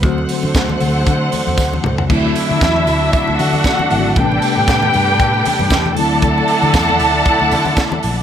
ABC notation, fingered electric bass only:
X:1
M:4/4
L:1/16
Q:"Swing 16ths" 1/4=116
K:Dmix
V:1 name="Fingered electric bass" clef=bass
D,,2 z D, D,,2 D,,2 D,2 z E,, D,,2 ^C,,2 | D,,2 z D, E,,2 D,,2 z D,, D,2 z2 ^G,,,2 | A,,,2 z A,, A,,2 G,,2 A,,2 z G,, E,,2 D,,2- | D,,2 z D, E,,2 D,,2 z D,, D,2 z2 ^A,,,2 |]